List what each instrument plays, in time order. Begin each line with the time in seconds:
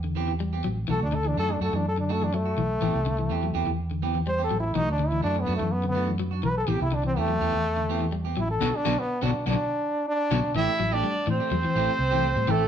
Already playing: fingered electric bass E2
0.04 clean electric guitar D3
0.15 clean electric guitar E3 B3 C4 G4
0.28 clean electric guitar E3
0.40 clean electric guitar G3
0.53 clean electric guitar B3 C4 G4
0.64 fingered electric bass A1, clean electric guitar F#3
0.88 fingered electric bass B1, clean electric guitar E3 A3 D4 F#4, trombone A4
1.01 fingered electric bass D2, trombone D4
1.12 clean electric guitar D3, trombone A4
1.25 clean electric guitar E3, trombone D4
1.37 fingered electric bass F#2, clean electric guitar A3 D4 F#4, trombone A4
1.49 clean electric guitar F#3, trombone D4
1.61 fingered electric bass F#2, clean electric guitar A3 D4 F#4, trombone A4
1.72 fingered electric bass F#2, clean electric guitar E3, trombone D4
1.89 trombone A4
1.98 clean electric guitar D3, trombone D4
2.09 clean electric guitar A3 D4 F#4, trombone A4
2.22 clean electric guitar E3, trombone D4
2.34 clean electric guitar F#3, trombone A3
2.46 clean electric guitar F#4, muted clean electric guitar stroke
2.57 fingered electric bass B1, clean electric guitar E3
2.81 fingered electric bass A1, clean electric guitar E3 B3 C4 G4
2.94 fingered electric bass C2
3.06 clean electric guitar D3
3.18 clean electric guitar E3
3.30 fingered electric bass E2, clean electric guitar E3 B3 C4 G4
3.43 clean electric guitar F#3
3.54 fingered electric bass E2, clean electric guitar E3 B3 C4 G4
3.67 fingered electric bass E2, clean electric guitar E3
3.91 clean electric guitar D3
4.02 clean electric guitar E3 B3 C4 G4
4.15 clean electric guitar E3
4.27 clean electric guitar G3, trombone C5
4.38 clean electric guitar B3 C4 G4
4.44 trombone A4
4.51 fingered electric bass A1, clean electric guitar F#3
4.60 trombone E4
4.74 fingered electric bass B1, clean electric guitar E3 A3 F#4, trombone D#4, muted clean electric guitar stroke
4.88 fingered electric bass D2, trombone D4
4.99 clean electric guitar D3
5.08 trombone E4
5.12 clean electric guitar E3
5.22 fingered electric bass F#2, clean electric guitar A3 D4 F#4, trombone D4
5.36 clean electric guitar F#3
5.40 trombone B3
5.46 fingered electric bass F#2, clean electric guitar A3 D4 F#4
5.56 clean electric guitar E3, trombone A3
5.61 fingered electric bass F#2
5.72 trombone B3
5.84 clean electric guitar D3
5.89 trombone B3
5.95 clean electric guitar A3 D4 F#4
6.07 clean electric guitar E3
6.20 clean electric guitar F#3
6.31 clean electric guitar D4 F#4
6.43 fingered electric bass B1, clean electric guitar E3, trombone B4
6.58 trombone A4
6.67 fingered electric bass A1, clean electric guitar E3 B3 C4 G4, trombone G4
6.80 fingered electric bass C2, trombone E4
6.92 clean electric guitar D3, trombone D4
7.03 clean electric guitar E3, trombone C4
7.16 fingered electric bass E2, clean electric guitar E3 B3 C4 G4, trombone A3
7.28 clean electric guitar F#3
7.41 fingered electric bass E2, clean electric guitar E3 B3 C4 G4
7.52 fingered electric bass E2, clean electric guitar E3
7.77 clean electric guitar D3
7.89 clean electric guitar E3 B3 C4 G4
8.00 clean electric guitar E3
8.12 clean electric guitar G3
8.25 clean electric guitar B3 C4 G4
8.37 fingered electric bass A1, clean electric guitar F#3, trombone E4
8.51 trombone A4
8.61 fingered electric bass B1, clean electric guitar B2 D3 F#3 B3 D4 F#4
8.76 trombone D4
8.85 fingered electric bass B1, clean electric guitar B2 D3 F#3 B3 D4 F#4
8.99 trombone B3
9.22 fingered electric bass B1, clean electric guitar B2 D3 F#3 B3 D4 F#4, trombone D4
9.46 fingered electric bass B1, clean electric guitar B2 D3 F#3 B3 D4 F#4, trombone D4
10.08 trombone D4
10.31 fingered electric bass B1, clean electric guitar B2 D3 F#3 B3 D4 F#4
10.55 fingered electric bass A1, clean electric guitar E3 A3 C4 G4, alto saxophone E4, trumpet E5
10.80 fingered electric bass A1, clean electric guitar F#3
10.91 clean electric guitar A3 C4 G4, alto saxophone D4, trumpet D5
11.04 clean electric guitar G3
11.27 fingered electric bass A2, clean electric guitar E3, alto saxophone C4, trumpet C5
11.40 clean electric guitar A3 C4 G4
11.51 fingered electric bass E2, clean electric guitar F#3
11.64 clean electric guitar E3, muted fingered electric bass stroke
11.75 fingered electric bass A1, clean electric guitar E3 A3 C4 G4
11.99 fingered electric bass C2
12.11 clean electric guitar E3 A3 C4 G4
12.36 fingered electric bass A2, clean electric guitar G3
12.47 fingered electric bass A1, clean electric guitar E3 C4 G4, trumpet A4, muted clean electric guitar stroke
12.52 alto saxophone A3